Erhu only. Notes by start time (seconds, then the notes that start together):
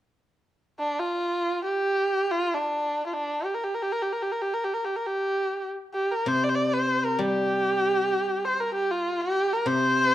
0.79 D4
1.00 F4
1.65 G4
2.31 F4
2.54 D4
3.07 F4
3.14 D4
3.45 G4
3.54 A#4
3.64 G4
3.74 A#4
3.82 G4
3.92 A#4
4.02 G4
4.12 A#4
4.23 G4
4.32 A#4
4.42 G4
4.54 A#4
4.65 G4
4.74 A#4
4.85 G4
4.96 A#4
5.07 G4
5.94 G4
6.12 A#4
6.28 C5
6.44 D5
6.49 C5
6.55 D5
6.73 C5
7.05 A#4
7.20 G4
8.45 C5
8.61 A#4
8.75 G4
8.91 F4
9.21 G4
9.53 A#4
9.66 C5